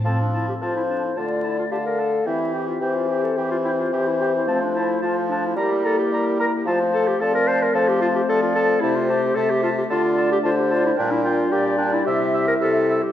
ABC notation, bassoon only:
X:1
M:4/4
L:1/8
Q:1/4=110
K:F
V:1 name="Bassoon" clef=bass
F,2 F,2 D,2 D,2 | E,2 E,2 E,2 E,2 | F,2 F,2 G,2 G,2 | F,2 F,2 F,2 F,2 |
C,2 C,2 D,2 D,2 | B,,2 B,,2 C,2 C,2 |]